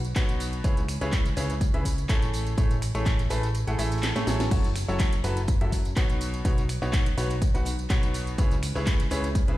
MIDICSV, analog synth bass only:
0, 0, Header, 1, 2, 480
1, 0, Start_track
1, 0, Tempo, 483871
1, 637, Time_signature, 4, 2, 24, 8
1, 9499, End_track
2, 0, Start_track
2, 0, Title_t, "Analog synth bass"
2, 0, Program_c, 0, 38
2, 0, Note_on_c, 0, 35, 96
2, 134, Note_off_c, 0, 35, 0
2, 157, Note_on_c, 0, 35, 97
2, 614, Note_off_c, 0, 35, 0
2, 637, Note_on_c, 0, 37, 94
2, 979, Note_off_c, 0, 37, 0
2, 1004, Note_on_c, 0, 37, 99
2, 1334, Note_off_c, 0, 37, 0
2, 1357, Note_on_c, 0, 37, 101
2, 1699, Note_off_c, 0, 37, 0
2, 1724, Note_on_c, 0, 37, 100
2, 2054, Note_off_c, 0, 37, 0
2, 2077, Note_on_c, 0, 33, 94
2, 2535, Note_off_c, 0, 33, 0
2, 2557, Note_on_c, 0, 33, 98
2, 2899, Note_off_c, 0, 33, 0
2, 2924, Note_on_c, 0, 33, 95
2, 3254, Note_off_c, 0, 33, 0
2, 3276, Note_on_c, 0, 33, 98
2, 3618, Note_off_c, 0, 33, 0
2, 3643, Note_on_c, 0, 33, 99
2, 3734, Note_off_c, 0, 33, 0
2, 3756, Note_on_c, 0, 33, 97
2, 4098, Note_off_c, 0, 33, 0
2, 4124, Note_on_c, 0, 45, 97
2, 4214, Note_off_c, 0, 45, 0
2, 4235, Note_on_c, 0, 33, 101
2, 4454, Note_off_c, 0, 33, 0
2, 4477, Note_on_c, 0, 30, 99
2, 4819, Note_off_c, 0, 30, 0
2, 4844, Note_on_c, 0, 30, 100
2, 5174, Note_off_c, 0, 30, 0
2, 5197, Note_on_c, 0, 30, 100
2, 5539, Note_off_c, 0, 30, 0
2, 5566, Note_on_c, 0, 42, 100
2, 5895, Note_off_c, 0, 42, 0
2, 5917, Note_on_c, 0, 35, 96
2, 6375, Note_off_c, 0, 35, 0
2, 6398, Note_on_c, 0, 35, 96
2, 6739, Note_off_c, 0, 35, 0
2, 6765, Note_on_c, 0, 35, 98
2, 7095, Note_off_c, 0, 35, 0
2, 7117, Note_on_c, 0, 35, 100
2, 7459, Note_off_c, 0, 35, 0
2, 7484, Note_on_c, 0, 35, 99
2, 7814, Note_off_c, 0, 35, 0
2, 7837, Note_on_c, 0, 35, 94
2, 8295, Note_off_c, 0, 35, 0
2, 8317, Note_on_c, 0, 37, 100
2, 8659, Note_off_c, 0, 37, 0
2, 8685, Note_on_c, 0, 37, 94
2, 9015, Note_off_c, 0, 37, 0
2, 9038, Note_on_c, 0, 37, 100
2, 9379, Note_off_c, 0, 37, 0
2, 9405, Note_on_c, 0, 37, 99
2, 9499, Note_off_c, 0, 37, 0
2, 9499, End_track
0, 0, End_of_file